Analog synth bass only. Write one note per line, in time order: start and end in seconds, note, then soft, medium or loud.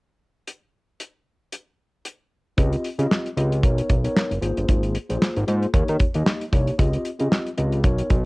2.58 2.76 C#2 loud
2.99 3.07 C#3 loud
3.37 3.65 C#2 medium
3.63 3.82 B1 loud
3.90 4.08 B1 medium
4.31 4.39 F#1 medium
4.42 4.53 G#1 loud
4.58 4.66 G1 loud
4.69 4.98 G#1 loud
5.10 5.18 A#1 medium
5.37 5.45 G#1 loud
5.48 5.67 G#2 loud
5.74 5.84 D#2 medium
5.89 5.97 D#3 loud
6.16 6.23 D#2 medium
6.53 6.71 C2 medium
6.79 6.98 C#2 loud
7.20 7.28 C#3 loud
7.58 7.85 C#2 medium
7.84 8.03 B1 loud
8.10 8.25 B1 medium